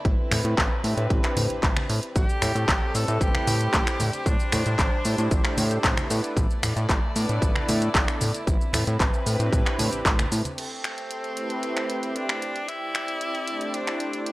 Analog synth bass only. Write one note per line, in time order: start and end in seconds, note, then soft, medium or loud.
0.05 0.16 A1 medium
0.31 0.42 A2 medium
0.45 0.55 A2 loud
0.58 0.68 A1 loud
0.84 0.95 A2 medium
0.97 1.08 A2 loud
1.10 1.21 A1 loud
1.37 1.47 A2 loud
1.50 1.60 A1 soft
1.63 1.74 A1 medium
1.89 2.00 A2 medium
2.16 2.26 A1 loud
2.42 2.53 A2 medium
2.55 2.66 A2 medium
2.68 2.79 A1 medium
2.95 3.05 A2 medium
3.08 3.18 A2 loud
3.21 3.31 A1 loud
3.47 3.68 A2 loud
3.73 3.84 A1 medium
4.00 4.11 A2 loud
4.26 4.37 A1 medium
4.53 4.63 A2 medium
4.66 4.76 A2 loud
4.79 4.89 A1 medium
5.05 5.16 A2 medium
5.18 5.29 A2 loud
5.31 5.42 A1 loud
5.58 5.79 A2 loud
5.84 5.95 A1 medium
6.11 6.21 A2 loud
6.37 6.47 A1 loud
6.63 6.74 A2 medium
6.76 6.87 A2 loud
6.89 7.00 A1 medium
7.16 7.26 A2 medium
7.29 7.39 A2 loud
7.42 7.53 A1 loud
7.69 7.89 A2 loud
7.94 8.05 A1 medium
8.21 8.32 A2 loud
8.47 8.58 A1 loud
8.74 8.84 A2 medium
8.87 8.97 A2 loud
9.00 9.10 A1 medium
9.26 9.37 A2 medium
9.40 9.50 A2 loud
9.53 9.63 A1 loud
9.79 9.90 A2 medium
9.93 10.03 A1 soft
10.05 10.26 A1 medium
10.32 10.42 A2 medium